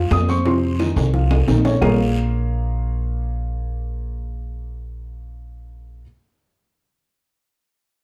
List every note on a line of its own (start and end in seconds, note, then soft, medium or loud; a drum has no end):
0.00 0.22 F3 medium
0.00 0.23 F4 medium
0.11 0.91 F2 medium
0.11 0.28 D#6 loud
0.11 high bongo soft
0.11 low bongo medium
0.11 high conga medium
0.11 high timbale medium
0.11 low timbale medium
0.11 short guiro medium
0.11 claves medium
0.28 0.42 C4 medium
0.28 0.42 C5 medium
0.28 0.45 C#6 loud
0.28 high bongo soft
0.28 high conga medium
0.28 short guiro medium
0.45 0.73 C3 medium
0.45 0.73 C4 medium
0.45 0.78 C6 medium
0.45 high bongo medium
0.45 high timbale medium
0.45 long guiro medium
0.63 high conga soft
0.79 1.08 D#3 medium
0.79 1.08 D#4 medium
0.79 high bongo medium
0.79 high conga medium
0.79 high timbale medium
0.79 short guiro medium
0.79 claves medium
0.96 1.44 C2 medium
0.96 high bongo soft
0.96 low timbale medium
0.96 short guiro medium
1.13 1.42 F3 medium
1.13 1.42 F4 medium
1.13 high bongo medium
1.13 high conga soft
1.13 long guiro medium
1.31 high bongo medium
1.31 high conga soft
1.31 low timbale medium
1.31 claves medium
1.47 1.78 A#1 medium
1.47 1.62 D#3 medium
1.47 1.62 D#4 medium
1.47 low bongo medium
1.47 high conga medium
1.47 low timbale medium
1.47 short guiro medium
1.65 1.79 C#4 medium
1.65 1.79 C#5 medium
1.65 low bongo medium
1.65 low timbale medium
1.65 short guiro medium
1.81 6.02 A#1 medium
1.81 6.01 A#3 medium
1.81 6.01 F4 medium
1.81 6.02 G#4 medium
1.81 6.02 A#4 medium
1.81 6.02 C#5 medium
1.81 6.02 F5 loud
1.81 low bongo loud
1.81 low conga medium
1.81 low timbale medium
1.81 long guiro medium
1.81 claves medium